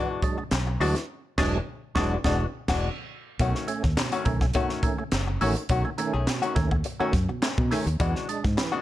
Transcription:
Already playing: E3 G#3 D4 F#4
0.22 F#3 G#3 D4, muted hollow-body jazz guitar stroke, kick, closed hi-hat
0.38 G#3 D4, muted hollow-body jazz guitar stroke
0.51 B1, snare, clap, closed hi-hat
0.67 muted hollow-body jazz guitar stroke
0.80 D2 E3 F#3 G#3 D4 F#4, open hi-hat
0.96 muted hollow-body jazz guitar stroke, snare, closed hi-hat
1.38 E1 E3 F#3 G#3 D4 G#4, kick, snare, crash
1.95 E1 E3 F#3 G#3 D4 F#4, kick, snare
2.24 E1 E3 G#3 D4 F#4, kick, snare
2.68 E1 E3 G#3 D4 F#4, kick, snare, crash
3.39 B1 B2 D#3 A3 C#4 F#4, kick, closed hi-hat
3.55 snare
3.68 A3 C#4, closed hi-hat
3.83 D#2, muted hollow-body jazz guitar stroke, kick, snare
3.97 B2, muted hollow-body jazz guitar stroke, snare, clap, closed hi-hat
4.12 D#3 A3 C#4 F#4, closed hi-hat
4.25 B1 D#3 A3 C#4, muted hollow-body jazz guitar stroke, kick, closed hi-hat
4.41 A3 C#4, muted hollow-body jazz guitar stroke, kick, snare
4.54 B2 D#3 A3 C#4 F#4, kick, closed hi-hat
4.69 snare
4.83 D#3 A3 C#4, muted hollow-body jazz guitar stroke, kick, closed hi-hat
4.98 A3 C#4, muted hollow-body jazz guitar stroke
5.12 F#1, snare, clap, closed hi-hat
5.27 muted hollow-body jazz guitar stroke
5.41 A1 D#3 A3 C#4 F#4, open hi-hat
5.56 muted hollow-body jazz guitar stroke, closed hi-hat
5.69 B1 B2 D#3 A3 C#4 F#4, kick, closed hi-hat
5.85 A3 C#4, muted hollow-body jazz guitar stroke
5.98 D#3 A3 C#4, muted hollow-body jazz guitar stroke, closed hi-hat
6.13 B1 D#3 A3 C#4 G#4
6.27 B2, snare, clap, closed hi-hat
6.42 D#3 A3 C#4 F#4, closed hi-hat
6.55 D#2 D#3 A3 C#4, muted hollow-body jazz guitar stroke, kick, snare, closed hi-hat
6.71 A3 C#4, muted hollow-body jazz guitar stroke, kick
6.84 muted hollow-body jazz guitar stroke, closed hi-hat
7.00 D#3 A3 C#4 F#4, muted fingered electric bass stroke
7.13 F#2, muted hollow-body jazz guitar stroke, kick, snare, closed hi-hat
7.29 B2, muted hollow-body jazz guitar stroke
7.42 A3 C#4, muted hollow-body jazz guitar stroke, snare, clap, closed hi-hat
7.58 B2, kick
7.71 D#3 A3 C#4 G#4, snare, open hi-hat
7.86 D#2, muted hollow-body jazz guitar stroke, closed hi-hat
8.00 E2 E3 G#3 D4 F#4, kick, closed hi-hat
8.15 snare
8.29 G#3 D4, closed hi-hat
8.44 G#2, muted hollow-body jazz guitar stroke, kick, snare
8.57 E3, muted hollow-body jazz guitar stroke, snare, clap, closed hi-hat
8.72 E3 G#3 D4 F#4

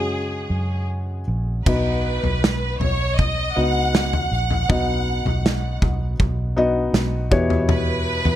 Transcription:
Already playing: F#2 C#3 G#3 C#4 F#4 G#4 C#5
0.50 F#2
1.28 A#1
1.66 B1 B3 D#4 F#4 B4 D#5, kick, floor tom, crash
2.23 B1, floor tom
2.44 snare
2.80 B1 C#5, floor tom
3.17 D#5, kick, floor tom
3.56 C#2 B3 D#4 F#4 D#5 F#5
3.95 snare
4.13 floor tom
4.32 A#1 F#5
4.51 floor tom
4.69 B1 B3 D#4 F#4 D#5, kick, floor tom
5.25 B1, floor tom
5.46 snare
5.82 B1, kick, floor tom
6.19 B1, kick, floor tom
6.56 B3 D#4 F#4 D#5
6.93 B1, snare
7.31 E2 B2 B3 E4 G4 C#5, kick
7.50 floor tom
7.69 B4, floor tom
8.25 E2, floor tom

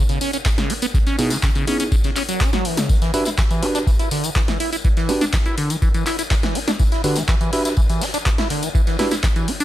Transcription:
0.09 C#3, closed hi-hat, ride, tambourine
0.21 C#4, open hi-hat, ride
0.33 C#4, closed hi-hat, tambourine
0.45 C#3, kick, snare, clap, tambourine
0.58 C#3, snare, closed hi-hat, tambourine
0.70 C#4, open hi-hat, ride
0.82 B3, closed hi-hat, ride, tambourine
0.94 C#3, kick, ride, tambourine
1.06 C#4, snare, closed hi-hat, tambourine
1.18 B2 B3 D#4 E4 G#4, open hi-hat, ride
1.30 C#3, snare, closed hi-hat, tambourine
1.43 C#3, kick, snare, clap, tambourine
1.55 C#3, closed hi-hat, tambourine
1.67 B3 C#4 D#4 E4 G#4, open hi-hat, ride
1.80 C#4, closed hi-hat, tambourine
1.92 C#3, kick, ride, tambourine
2.04 C#3, snare, closed hi-hat, tambourine
2.16 C#4, clap, open hi-hat, ride
2.29 F#3, closed hi-hat, ride, tambourine
2.41 C#4, kick, snare, clap, tambourine
2.53 F#3, snare, closed hi-hat, ride, tambourine
2.64 E3, open hi-hat, ride
2.77 C#3, snare, closed hi-hat, tambourine
2.89 E3, kick, ride, tambourine
3.02 E3, snare, closed hi-hat, tambourine
3.14 D4 E4 F#4 G4 B4, open hi-hat, ride
3.25 E4, snare, closed hi-hat, ride, tambourine
3.38 E3, kick, snare, clap, tambourine
3.51 E3, closed hi-hat, tambourine
3.63 D4 E4 F#4 G4 B4, snare, open hi-hat, ride
3.75 D4, snare, closed hi-hat, tambourine
3.87 E3, kick, ride, tambourine
3.99 E4, closed hi-hat, ride, tambourine
4.11 D3, open hi-hat, ride
4.24 E3, closed hi-hat, tambourine
4.35 E3, kick, snare, clap, tambourine
4.48 E3, snare, closed hi-hat, tambourine
4.60 E4, open hi-hat, ride
4.73 E4, closed hi-hat, ride, tambourine
4.85 E3, kick, ride, tambourine
4.97 E3, snare, closed hi-hat, tambourine
5.09 D4 E4 F#4 G4 B4, open hi-hat, ride
5.21 D4, snare, closed hi-hat, tambourine
5.33 E3, kick, snare, clap, ride, tambourine
5.46 E4, closed hi-hat, tambourine
5.58 D3, open hi-hat, ride
5.70 E3, closed hi-hat, tambourine
5.82 E3, kick, ride, tambourine
5.94 E3, closed hi-hat, tambourine
6.06 E4, snare, clap, open hi-hat, ride
6.19 E4, closed hi-hat, tambourine
6.31 E3, kick, snare, clap, ride, tambourine
6.43 E3, snare, closed hi-hat, tambourine
6.55 E4, open hi-hat, ride
6.68 D4, snare, closed hi-hat, tambourine
6.79 E3, kick, ride, tambourine
6.92 E4, snare, closed hi-hat, tambourine
7.04 D3 D4 F#4 G4 B4, open hi-hat, ride
7.16 E3, snare, closed hi-hat, ride, tambourine
7.28 E3, kick, snare, clap, ride, tambourine
7.41 E3, closed hi-hat, tambourine
7.52 D4 E4 F#4 G4 B4, snare, open hi-hat, ride
7.65 E4, snare, closed hi-hat, tambourine
7.77 E3, kick, ride, tambourine
7.90 E3, closed hi-hat, ride, tambourine
8.01 E4, snare, open hi-hat, ride
8.14 D4, snare, closed hi-hat, tambourine
8.26 E3, kick, clap, ride, tambourine
8.38 E4, snare, closed hi-hat, ride, tambourine
8.50 D3, snare, open hi-hat
8.63 E3, closed hi-hat, ride, tambourine
8.75 E3, kick, ride, tambourine
8.87 E3, snare, closed hi-hat, tambourine
8.99 D4 E4 F#4 G4 B4, snare, open hi-hat, ride
9.11 E4, snare, closed hi-hat, tambourine
9.23 E3, kick, snare, clap, ride, tambourine
9.36 E3, closed hi-hat, tambourine
9.48 E4, open hi-hat, ride
9.60 D4, closed hi-hat, tambourine

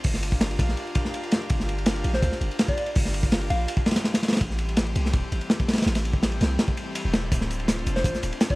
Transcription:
0.04 G1 D4 F4 G4 A#4 F5, kick, open hi-hat
0.14 snare
0.23 ride
0.32 kick
0.41 snare, ride
0.51 ride
0.59 A#1, kick, ride
0.69 snare
0.77 ride
0.87 ride
0.95 D4 F4 G4 A#4 F5, kick, ride
1.05 snare
1.14 ride
1.23 D4 F4 G4 A#4 F5, ride
1.31 snare, ride
1.42 ride
1.50 G1 D4 F4 G4 A#4 F5, kick, ride
1.60 snare
1.69 ride
1.78 ride
1.86 snare, ride
1.96 ride
2.04 A#1, ride
2.13 C5, snare
2.22 D2, kick, ride
2.32 snare
2.41 G1, ride
2.51 ride
2.59 D4 F4 G4 A#4 F5, snare, ride
2.68 D5, kick
2.77 ride
2.86 ride
2.95 G1 D4 F4 G4 A#4 F5, kick, open hi-hat
3.05 snare
3.14 ride
3.23 kick
3.32 snare, ride
3.41 ride
3.50 A#1 F5, ride
3.68 ride
3.77 kick
3.86 snare, ride
3.91 snare, ride
3.96 snare, ride
4.04 E3 G3 A3 C4 G4, snare, ride
4.14 snare, ride
4.23 snare, ride
4.28 snare, ride
4.32 snare, ride
4.37 snare, ride
4.41 A1 E3 G3 A3 C4 G4, kick, ride
4.50 snare
4.58 ride
4.69 ride
4.77 snare, ride
4.86 ride
4.96 C2, ride
5.06 snare
5.13 E1, kick, ride
5.32 A1, ride
5.41 ride
5.50 E3 G3 A3 C4 G4, snare, ride
5.60 kick
5.68 snare, ride
5.73 snare, ride
5.78 snare, ride
5.82 snare, ride
5.86 A1 E3 G3 A3 C4 G4, snare, ride
5.95 snare, ride
6.05 ride
6.13 kick
6.23 snare, ride
6.32 ride
6.41 C2, snare, ride
6.59 snare, ride
6.68 kick
6.77 E3 G3 A3 C4 G4, ride
6.95 ride
7.05 E1 E3 G3 A3 C4 G4
7.14 snare, ride
7.32 D1 A3 C4 D4 F4 C5, kick, closed hi-hat, ride
7.41 snare
7.50 closed hi-hat, ride
7.59 ride
7.68 snare, closed hi-hat, ride
7.79 ride
7.86 F1, closed hi-hat, ride
7.95 C5, snare
8.04 A1, kick, closed hi-hat, ride
8.14 snare, closed hi-hat
8.23 D1, closed hi-hat, ride
8.32 ride
8.41 A3 C4 D4 F4 C5, snare, closed hi-hat, ride
8.50 D5, kick

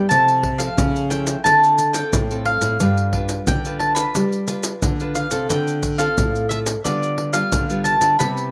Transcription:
0.09 C3 F3 A3 E4 A5, pandeiro, maracas, surdo
0.28 pandeiro, maracas
0.43 pandeiro, surdo
0.58 F3 A3 F5, pandeiro, maracas
0.77 C#3, pandeiro, maracas, surdo
0.96 pandeiro, maracas
1.10 F3 A3 E4 G5, pandeiro, maracas
1.27 pandeiro, maracas
1.44 D3 C4 F4 A4 A5, pandeiro, maracas, surdo
1.64 pandeiro, maracas
1.78 pandeiro, maracas
1.93 C4 F4 A4 G5, pandeiro, maracas
2.13 A2, pandeiro, maracas, surdo
2.31 C4 F4 A4, pandeiro, maracas
2.45 F5, pandeiro
2.61 A2, pandeiro, maracas
2.80 G2 G3 D4 F4 B4, pandeiro, maracas, surdo
2.97 pandeiro, maracas
3.13 D4 F4 B4, pandeiro, surdo
3.29 pandeiro, maracas
3.47 D3 G5, pandeiro, maracas, surdo
3.65 D4 F4 B4, pandeiro, maracas
3.79 A5, pandeiro
3.95 D4 F4 B4 B5, pandeiro, maracas
4.15 G3, pandeiro, maracas, surdo
4.32 pandeiro, maracas
4.48 D4 F4 B4, pandeiro, maracas
4.63 pandeiro, maracas
4.82 D3, pandeiro, maracas, surdo
5.00 D4 F4 B4, pandeiro, maracas
5.15 F5, pandeiro, maracas
5.31 C3 C4 F4 A4, pandeiro, maracas
5.49 D3 G5, pandeiro, maracas, surdo
5.68 pandeiro, maracas
5.83 pandeiro, maracas, surdo
5.98 C4 F4 A4 F5, pandeiro, maracas
6.18 A2, pandeiro, maracas, surdo
6.35 pandeiro, maracas
6.49 C4 F4 A4 E5, pandeiro, maracas
6.66 pandeiro, maracas
6.84 D3 G3 B3 F4 D5, pandeiro, maracas, surdo
7.03 pandeiro, maracas
7.18 pandeiro
7.33 G3 B3 F4 F5, pandeiro, maracas
7.52 D3, pandeiro, maracas, surdo
7.70 G3 B3 F4, pandeiro, maracas
7.84 A5, pandeiro, maracas
8.01 D3, pandeiro, maracas
8.19 C3 G3 B3 E4 B5, pandeiro, maracas, surdo
8.37 pandeiro, maracas

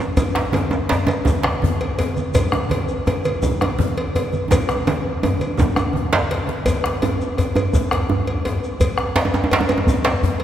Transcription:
0.17 bombo low, cowbell, djembe slap, djembe tone, djembe bass, low conga, shekere
0.35 bombo rim, djembe slap
0.52 cowbell, high conga, djembe tone
0.55 djembe tone
0.71 djembe slap, djembe tone, shekere
0.89 bombo rim, cowbell, djembe slap, shekere
0.92 djembe slap, djembe bass
1.07 cowbell, djembe tone, high conga, shekere
1.25 bombo low, high conga, djembe tone, low conga, shekere
1.27 djembe tone
1.43 bombo rim, cowbell, djembe slap, high conga
1.62 high conga, djembe bass
1.81 cowbell, djembe slap
1.99 cowbell, djembe tone
2.16 high conga, shekere
2.34 bombo low, cowbell, djembe slap, low conga, djembe bass, shekere
2.52 bombo rim, djembe slap, djembe tone
2.70 cowbell, high conga, djembe tone
2.88 djembe slap, shekere
3.07 bombo rim, cowbell, djembe slap, djembe tone, djembe bass, shekere
3.25 cowbell, high conga, shekere
3.42 bombo low, high conga, djembe tone, low conga, shekere
3.61 bombo rim, cowbell, djembe slap, high conga, djembe tone
3.79 high conga, djembe bass
3.97 cowbell, djembe slap
4.15 cowbell, djembe tone
4.33 djembe slap, high conga, shekere
4.51 bombo low, cowbell, djembe tone, low conga, djembe bass, shekere
4.69 bombo rim, djembe slap, shekere
4.87 cowbell, high conga, djembe tone
5.23 cowbell, high conga, djembe tone, djembe bass
5.40 cowbell, djembe slap, high conga, shekere
5.57 bombo rim, bombo low, djembe slap, djembe tone, low conga, shekere
5.76 bombo rim, cowbell, high conga, djembe tone, djembe bass, shekere
5.93 bombo rim, high conga, djembe bass
6.12 bombo rim, cowbell, djembe slap, high conga, djembe bass
6.31 cowbell, djembe slap
6.47 djembe slap, high conga
6.66 bombo low, cowbell, djembe slap, djembe bass, shekere
6.84 bombo rim, djembe slap
7.02 cowbell, djembe tone, djembe bass
7.21 djembe slap, shekere
7.38 bombo rim, cowbell, djembe slap, djembe bass, shekere
7.55 cowbell, djembe bass, shekere
7.73 bombo low, djembe tone, shekere
7.91 bombo rim, cowbell, djembe slap
8.10 djembe bass
8.27 cowbell, djembe slap
8.45 cowbell, djembe tone
8.64 djembe slap, shekere
8.80 bombo low, cowbell, djembe slap, djembe bass, shekere
8.98 bombo rim, djembe slap
9.16 cowbell, djembe slap, djembe tone
9.25 djembe tone
9.34 djembe slap, djembe tone, shekere
9.44 djembe tone
9.51 bombo rim, cowbell, djembe slap, djembe bass, shekere
9.61 djembe tone
9.69 cowbell, djembe tone, shekere
9.78 djembe tone
9.87 bombo low, djembe tone, shekere
10.04 bombo rim, cowbell, djembe slap
10.23 djembe bass
10.40 cowbell

